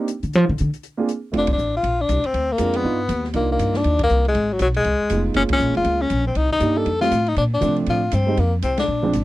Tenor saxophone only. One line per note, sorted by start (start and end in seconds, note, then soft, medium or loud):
1.38 1.50 D4 medium
1.53 1.74 D4 medium
1.77 2.02 F4 medium
2.01 2.28 D4 medium
2.26 2.54 C4 medium
2.52 2.78 A#3 medium
2.77 3.25 B3 medium
3.36 3.49 A#3 medium
3.52 3.79 A#3 medium
3.77 4.01 D4 medium
4.03 4.25 A#3 loud
4.28 4.54 G#3 medium
4.53 4.61 F#3 medium
4.62 4.68 F#3 medium
4.77 5.22 G#3 medium
5.36 5.43 C#4 loud
5.53 5.75 C#4 medium
5.77 6.03 F4 medium
6.01 6.26 C#4 loud
6.27 6.38 C4 medium
6.37 6.51 D#4 loud
6.52 6.79 D#4 medium
6.77 7.00 A4 medium
7.01 7.30 F4 loud
7.28 7.37 D#4 medium
7.38 7.44 D4 medium
7.54 7.76 D4 medium
7.90 8.16 F4 medium
8.14 8.41 C4 medium
8.39 8.53 A#3 medium
8.64 8.77 C4 medium
8.79 9.24 D4 medium